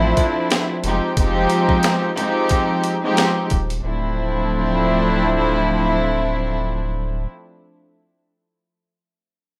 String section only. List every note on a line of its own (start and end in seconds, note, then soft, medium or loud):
0.00 0.75 F3 loud
0.00 0.75 A3 medium
0.00 0.75 C4 medium
0.00 0.75 D4 medium
0.00 0.75 E4 loud
0.84 1.15 F3 medium
0.84 1.15 G#3 medium
0.84 1.15 C4 medium
0.84 1.15 D#4 medium
0.84 1.16 G4 medium
1.17 2.10 F3 loud
1.17 2.10 G#3 medium
1.17 2.10 C4 medium
1.17 2.11 D#4 medium
1.17 2.11 G4 loud
2.15 2.94 F3 medium
2.15 2.94 G#3 medium
2.15 2.94 C4 medium
2.15 2.94 D#4 medium
2.15 2.95 G4 loud
3.02 3.46 F3 loud
3.02 3.47 G#3 medium
3.02 3.47 C4 medium
3.02 3.47 D#4 medium
3.02 3.47 G4 loud
3.83 7.26 F3 medium
3.83 7.26 A3 medium
3.83 7.26 C4 medium
3.83 7.26 D4 medium
3.83 7.26 E4 loud